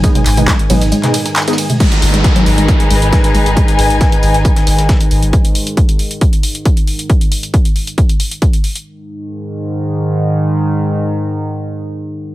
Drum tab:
CC |--------------------------------|x-------------------------------|--------------------------------|--------------------------------|
RD |----x-------x-------x-------x---|--------------------------------|--------------------------------|--------------------------------|
HH |x-x-o-x-x-x-o-x-x-x-o-x-x-x-o-x-|x-x-o-x-x-x-o-x-x-x-o-x-x-x-o-x-|x-x-o-x-x-x-o-x-x-x-o-x-x-x-o-x-|x-x-o-x-x-x-o-x-x-x-o-x-x-x-o-x-|
TB |x---x-x-x---x-x-x---x-x-xxxxx-x-|x---x---x---x---x---x---x---x---|x-------x---x---x---x---x---x---|--------------------------------|
CP |----x---x---------x-----x-------|--------------------------------|--------------------------------|--------------------------------|
SD |--------o-----o---o-o-o-oooo----|------o-o---------------o-o-----|--------o-----o---o-o-o-o-------|--------------------------------|
T2 |--o---o-----o-----o-----------o-|--------------------------------|--------------------------------|--------------------------------|
BD |o-------o-----------------------|o-------o-------o-------o-------|o-------o-------o-------o-------|o-------o-------o-------o-------|

CC |--------------------------------|--------------------------------|--------------------------------|
RD |--------------------------------|--------------------------------|--------------------------------|
HH |x-x-o-x-x-x-o-x-x-x-o-x-x-x-o-x-|--------------------------------|--------------------------------|
TB |--------------------------------|--------------------------------|--------------------------------|
CP |--------------------------------|--------------------------------|--------------------------------|
SD |--------------------------------|--------------------------------|--------------------------------|
T2 |--------------------------------|--------------------------------|--------------------------------|
BD |o-------o-------o-------o-------|--------------------------------|--------------------------------|